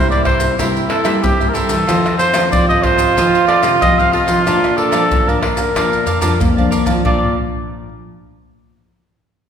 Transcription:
Already playing: G2 C3 E4
0.10 G3 A#3 E4 A#4 C5 D5 E5, pandeiro, maracas
0.24 E4 A#4 C5 E5, pandeiro, tamborim, surdo
0.39 A#4 C5 E5, pandeiro, maracas
0.58 C3 G3 A#3 E4 A#4 C5 E5, pandeiro, maracas, surdo
0.76 pandeiro, maracas
0.89 E4 A4 A#4 C5 E5, pandeiro, tamborim
1.04 G3 A#3 E4 A#4 C5 E5, pandeiro, tamborim, maracas
1.23 G2 C4 G4, pandeiro, tamborim, maracas, surdo
1.40 G3 A#3 E4 A#4 C5 E5, pandeiro, maracas
1.49 A#4
1.53 E4 A4 A#4 C5 E5, pandeiro, maracas
1.68 E3 A#4 C5 E5, pandeiro, maracas
1.87 F2 D#3 F3 A3 C4 F4 A4 C5 D#5, pandeiro, tamborim, maracas, surdo
2.06 pandeiro, tamborim, maracas
2.18 F4 A4 C5 D#5, pandeiro, maracas
2.33 D#3 A3 C4 F4 A4 C5 D#5, pandeiro, tamborim, maracas
2.52 C3 F3 D5, pandeiro, maracas, surdo
2.69 D#3 A3 C4 A4 C5 D#5, pandeiro, maracas
2.83 F4 A4 C5 D#5, pandeiro, tamborim, surdo
2.97 A4 C5 D#5, pandeiro, maracas
3.16 F2 D#3 F3 A3 C4 F4 A4 C5 D#5, pandeiro, maracas, surdo
3.35 pandeiro, maracas
3.47 F4 A4 C5 D5 D#5, pandeiro, tamborim
3.62 C3 D#3 A3 C4 F4 A4 C5 D#5, pandeiro, tamborim, maracas
3.82 C3 F3 D#5, pandeiro, tamborim, maracas, surdo
3.98 D#3 A3 C4 A4 C5 D#5 F5, pandeiro, maracas
4.12 F4 A4 C5 D#5, pandeiro
4.26 F3 A4 C5 D#5, pandeiro, maracas
4.45 A#2 F3 D4 A#4 D5 F5 A5, pandeiro, tamborim, maracas, surdo
4.64 pandeiro, tamborim, maracas
4.76 A4 A#4 D5 F5 A5, pandeiro
4.91 F3 A3 D4 A#4 D5 F5 A5, pandeiro, tamborim, maracas
5.11 F2 A#2, pandeiro, maracas, surdo
5.27 F3 A3 D4 A#4 D5 F5 A5, pandeiro, maracas
5.41 A#4 D5 F5 A5, pandeiro, tamborim
5.56 D5 F5 A5, pandeiro, maracas
5.75 A#2 F3 D4 A#4 D5 F5 A5, pandeiro, tamborim, maracas, surdo
5.93 pandeiro, maracas
6.06 A#4 D5 F5 A5, surdo, pandeiro, maracas
6.21 F3 A3 D4 A#4 D5 F5 A5, surdo, pandeiro, maracas
6.40 F2 A#3 D4, surdo, pandeiro, maracas
6.57 F3 D4 D5 F5 A5, pandeiro, maracas, surdo
6.71 A#4 D5 F5 A5, pandeiro, maracas
6.86 F3 D5 F5 A5, pandeiro, maracas, surdo
7.05 A#2 F3 A3 D4 A#4 D5 F5 A5, surdo

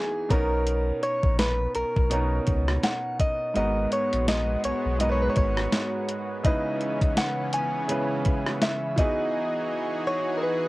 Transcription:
Already playing: E3 B3 D#4 F#4 G#4
0.29 B1 B2 B3 C#4 D#4 A#4, kick, closed hi-hat
0.67 closed hi-hat
1.03 C#5, closed hi-hat
1.23 A#1, kick
1.39 B4, snare, closed hi-hat
1.75 B1 A#4, closed hi-hat
1.96 B1, kick
2.10 B2 B3 C#4 D#4 A#4, closed hi-hat
2.47 C#2, kick, closed hi-hat
2.68 cross-stick
2.84 F#5, snare, closed hi-hat
3.20 D#5, kick, closed hi-hat
3.54 G#1 G#2 G#3 B3 F#4 A#4 D#5, closed hi-hat
3.92 C#5, closed hi-hat
4.13 A#1, closed hi-hat
4.28 D#5, snare, closed hi-hat
4.64 B1 C#5, closed hi-hat
4.86 B1
4.99 G#2 G#3 B3 F#4 A#4 D#5, closed hi-hat
5.09 B4 C#5
5.22 B4
5.30 C#5
5.36 G#1 C#5, kick, closed hi-hat
5.57 cross-stick
5.72 snare, closed hi-hat
6.09 closed hi-hat
6.43 C#3 E3 G#3 B3 C#4 D#4 E4 B4 D#5, kick, closed hi-hat
6.81 closed hi-hat
7.01 kick, closed hi-hat
7.17 F#5, snare, closed hi-hat
7.53 G#5, closed hi-hat
7.88 C#3 G#3 C#4 E4 B4, closed hi-hat
8.25 kick, closed hi-hat
8.46 cross-stick
8.62 E5, snare, closed hi-hat
8.96 E3 B3 D#4 F#4 G#4 D#5, kick, closed hi-hat
10.07 C#5
10.37 A#4
10.43 B4

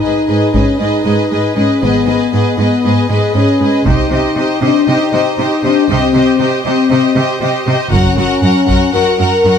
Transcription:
Already playing: D#4
0.02 G#2 G#4 B4 D#5
0.27 G#2 G#4 B4 D#5
0.53 G#2 C#4 G#4 B4 D#5, taiko
0.79 G#2 D#4 G#4 B4 D#5
1.04 G#2 G#4 B4 D#5
1.30 G#2 G#4 B4 D#5
1.56 G#2 C#4 G#4 B4 D#5
1.81 G#1 G#2 B3 G#4 B4 D#5
2.06 G#2 G#4 B4 D#5
2.32 G#2 G#4 B4 D#5
2.57 G#2 B3 G#4 B4 D#5
2.84 G#2 G#4 B4 D#5
3.09 G#2 G#3 G#4 B4 D#5
3.34 G#2 C#4 G#4 B4 D#5
3.60 G#2 G#4 B4 D#5
3.85 C2 C3 D#4 G4 C5 D#5, taiko
4.11 C3 G4 C5 D#5
4.36 C3 G4 C5 D#5
4.61 C3 D4 G4 C5 D#5
4.87 C3 D#4 G4 C5 D#5
5.12 C3 G4 C5 D#5
5.38 C3 G4 C5 D#5
5.62 C3 D4 G4 C5 D#5
5.88 C2 C3 C4 G4 C5 D#5
6.14 C3 G4 C5 D#5
6.39 C3 G4 C5 D#5
6.65 C3 C4 G4 C5 D#5
6.90 C3 G4 C5 D#5
7.16 C3 G4 C5 D#5
7.41 C3 G4 C5 D#5
7.66 C3 G4 C5 D#5
7.92 F#1 F#2 C#4 F#4 A#4 F#5, taiko
8.17 F#2 F#4 A#4 F#5
8.42 F#2 F#4 A#4 F#5
8.67 F#2 F#4 A#4 F#5, taiko
8.93 F#2 F#4 A#4 F#5
9.19 F#2 F#4 A#4 F#5
9.44 F#2 F#4 A#4 F#5

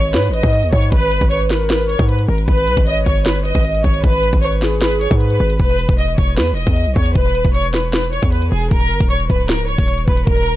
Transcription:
Already playing: G#1 C#5
0.14 G#2 B4, snare, closed hi-hat
0.24 closed hi-hat
0.29 G#1
0.34 B4 D#5, closed hi-hat
0.43 G#2, kick, closed hi-hat
0.53 D#5, closed hi-hat
0.63 D#2, closed hi-hat
0.72 G#2 C#5, kick
0.82 closed hi-hat
0.92 G#1 B4, kick, closed hi-hat
1.02 closed hi-hat
1.11 G1, closed hi-hat
1.21 G#1, kick, closed hi-hat
1.31 B4 C#5, closed hi-hat
1.41 closed hi-hat
1.50 A#4 B4, snare, open hi-hat
1.70 B4, snare, closed hi-hat
1.80 closed hi-hat
1.89 C#5, closed hi-hat
1.99 G#2, kick, closed hi-hat
2.09 B4, closed hi-hat
2.19 closed hi-hat
2.28 G#1 A#4
2.38 closed hi-hat
2.48 G#1 B4, kick, closed hi-hat
2.58 closed hi-hat
2.67 B1 B4, closed hi-hat
2.77 G#1, kick, closed hi-hat
2.87 C#5 D#5, closed hi-hat
2.97 closed hi-hat
3.06 G1 C#5, kick, closed hi-hat
3.26 B4, snare, closed hi-hat
3.35 closed hi-hat
3.45 B4 D#5, closed hi-hat
3.55 G#1, kick, closed hi-hat
3.65 D#5, closed hi-hat
3.75 closed hi-hat
3.84 G#1 C#5, kick
3.94 closed hi-hat
4.04 G#1 B4, kick, closed hi-hat
4.13 closed hi-hat
4.23 closed hi-hat
4.33 G#1, kick, closed hi-hat
4.42 B4 C#5, closed hi-hat
4.52 closed hi-hat
4.62 G#4 B4, snare, open hi-hat
4.81 B4, snare, closed hi-hat
4.91 closed hi-hat
5.01 C#5, closed hi-hat
5.11 G#2, kick, closed hi-hat
5.21 B4, closed hi-hat
5.30 closed hi-hat
5.40 G#1
5.50 closed hi-hat
5.59 E1 B4, kick, closed hi-hat
5.69 closed hi-hat
5.79 closed hi-hat
5.89 E1, kick, closed hi-hat
5.99 D#5, closed hi-hat
6.08 closed hi-hat
6.18 E1 C#5, kick, closed hi-hat
6.37 E2 B4, snare, closed hi-hat
6.47 closed hi-hat
6.52 E1
6.57 D#5, closed hi-hat
6.67 E2, kick, closed hi-hat
6.76 closed hi-hat
6.86 B1, closed hi-hat
6.96 E2 C#5, kick
7.06 closed hi-hat
7.15 E1 B4, kick, closed hi-hat
7.25 closed hi-hat
7.35 D#1, closed hi-hat
7.45 E1, kick, closed hi-hat
7.54 C#5, closed hi-hat
7.64 closed hi-hat
7.74 B4, snare, open hi-hat
7.93 B4, snare, closed hi-hat
8.03 closed hi-hat
8.13 C#5, closed hi-hat
8.23 E2, kick, closed hi-hat
8.32 B4, closed hi-hat
8.42 closed hi-hat
8.52 E1 G#4
8.62 closed hi-hat
8.71 D#1 A#4, kick, closed hi-hat
8.81 closed hi-hat
8.91 G1, closed hi-hat
9.00 D#1, kick, closed hi-hat
9.10 C#5, closed hi-hat
9.20 closed hi-hat
9.30 C#1 B4, kick, closed hi-hat
9.49 A#4, snare, closed hi-hat
9.59 closed hi-hat
9.68 C#5, closed hi-hat
9.78 D#1, kick, closed hi-hat
9.88 closed hi-hat
9.98 closed hi-hat
10.08 D#1 B4, kick
10.17 closed hi-hat
10.27 D#1 A#4, kick, closed hi-hat
10.37 closed hi-hat
10.47 closed hi-hat

